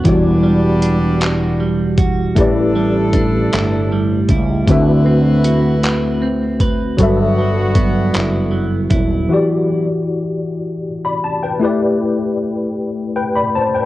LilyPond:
<<
  \new Staff \with { instrumentName = "Tine electric piano" } { \time 6/8 \key e \minor \tempo 4. = 52 << { r2. | r2. | r2. | r2. |
r2 r16 <d'' b''>16 a''16 <b' g''>16~ | <b' g''>16 r4. r16 <b' g''>16 <d'' b''>16 <c'' a''>16 <b' g''>16 | } \\ { <e g e' fis' d''>2. | <a e' g' b' d''>2. | <d a c' fis' b' e''>2. | <fis fis' a' b' e''>2. |
<e e' fis' g' d''>2. | <a e' g' b' d''>2. | } >> }
  \new Staff \with { instrumentName = "Horn section" } { \time 6/8 \key e \minor <g b d'>2~ <g b d'>8 r8 | <d' e' a'>2~ <d' e' a'>8 r8 | <e' fis' b'>2~ <e' fis' b'>8 r8 | <b d' fis'>2~ <b d' fis'>8 r8 |
r2. | r2. | }
  \new Staff \with { instrumentName = "Clean electric guitar" } { \time 6/8 \key e \minor e8 g8 d'8 fis'8 g8 fis'8 | a,8 g8 d'8 e'8 g8 e'8 | d8 c'8 fis'8 b'8 c'8 b'8 | g,8 fis8 b8 e'8 fis8 e'8 |
r2. | r2. | }
  \new Staff \with { instrumentName = "Fretless electric bass" } { \clef bass \time 6/8 \key e \minor e,,2. | a,,4. g,,4 cis,8 | d,2. | g,,4. fis,,4 dis,,8 |
r2. | r2. | }
  \new DrumStaff \with { instrumentName = "Drums" } \drummode { \time 6/8 <hh bd>4 hh8 <hc hh>4 <hh bd>8 | <hh bd>4 <hh bd>8 <hc hh>4 <hh bd>8 | <hh bd>4 hh8 <hc hh>4 <hh bd>8 | <hh bd>4 <hh bd>8 <hc hh>4 <hh bd>8 |
r4. r4. | r4. r4. | }
>>